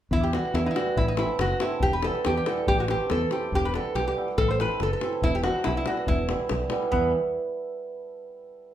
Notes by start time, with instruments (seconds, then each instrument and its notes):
0.11 fingered electric bass E2, resonator guitar played with a steel bar E4, davul low
0.23 resonator guitar played with a steel bar G4
0.32 hammered dulcimer E3 G3 B3 E4, resonator guitar played with a steel bar F#4, davul high
0.45 davul high
0.54 fingered electric bass E2, resonator guitar played with a steel bar E4, davul high
0.66 resonator guitar played with a steel bar D#4 E4
0.71 resonator guitar played with a steel bar E4
0.75 hammered dulcimer E3 G3 B3 E4, resonator guitar played with a steel bar F#4, davul high
0.86 davul high
0.97 fingered electric bass A1, resonator guitar played with a steel bar E4, davul low
1.08 resonator guitar played with a steel bar D#4
1.17 hammered dulcimer E3 A3 C4 E4, resonator guitar played with a steel bar E4, davul high
1.29 davul high
1.39 fingered electric bass F#1, resonator guitar played with a steel bar F#4, davul high
1.60 hammered dulcimer E3 A3 C4 E4, resonator guitar played with a steel bar E4, davul high
1.72 davul high
1.80 fingered electric bass E1, resonator guitar played with a steel bar G4, davul low
1.93 resonator guitar played with a steel bar B4
2.03 hammered dulcimer E3 G3 B3 E4, resonator guitar played with a steel bar A4, davul high
2.15 davul high
2.25 fingered electric bass E2, resonator guitar played with a steel bar G4, davul high
2.37 resonator guitar played with a steel bar G4
2.46 hammered dulcimer E3 G3 B3 E4, resonator guitar played with a steel bar A4, davul high
2.58 davul high
2.67 fingered electric bass A1, resonator guitar played with a steel bar G4, davul low
2.78 resonator guitar played with a steel bar F#4, davul high
2.88 hammered dulcimer E3 A3 C4 E4, resonator guitar played with a steel bar G4, davul high
3.00 davul high
3.10 fingered electric bass E2, resonator guitar played with a steel bar A4, davul high
3.21 davul high
3.31 hammered dulcimer E3 A3 C4 E4, resonator guitar played with a steel bar G4, davul high
3.43 davul high
3.52 fingered electric bass E1, resonator guitar played with a steel bar G4, davul low
3.65 resonator guitar played with a steel bar B4
3.74 hammered dulcimer E3 G3 B3 E4, resonator guitar played with a steel bar A4, davul high
3.85 davul high
3.95 fingered electric bass B1, resonator guitar played with a steel bar G4, davul high
4.08 resonator guitar played with a steel bar G4
4.16 hammered dulcimer E3 G3 B3 E4
4.28 davul high
4.38 fingered electric bass A1, resonator guitar played with a steel bar A4, davul low
4.51 resonator guitar played with a steel bar C5
4.59 hammered dulcimer E3 A3 C4 E4, resonator guitar played with a steel bar B4, davul high
4.72 davul high
4.80 fingered electric bass F#1, resonator guitar played with a steel bar A4, davul high
4.93 resonator guitar played with a steel bar A4
5.01 hammered dulcimer E3 A3 C4 E4, davul high
5.13 davul high
5.22 fingered electric bass E1, resonator guitar played with a steel bar E4, davul low
5.35 resonator guitar played with a steel bar G4
5.44 hammered dulcimer E3 G3 B3 E4, resonator guitar played with a steel bar F#4, davul high
5.56 davul high
5.64 fingered electric bass B1, resonator guitar played with a steel bar E4, davul high
5.77 resonator guitar played with a steel bar E4
5.86 hammered dulcimer E3 G3 B3 E4, resonator guitar played with a steel bar F#4, davul high
5.97 davul high
6.07 fingered electric bass E1, resonator guitar played with a steel bar E4, davul low
6.19 davul high
6.28 hammered dulcimer E3 G3 B3 E4, davul high
6.40 davul high
6.49 fingered electric bass B1, davul high
6.70 hammered dulcimer E3 G3 B3 E4, davul high
6.83 davul high
6.92 fingered electric bass E2, hammered dulcimer E3 G3 B3 E4, resonator guitar played with a steel bar B3, davul low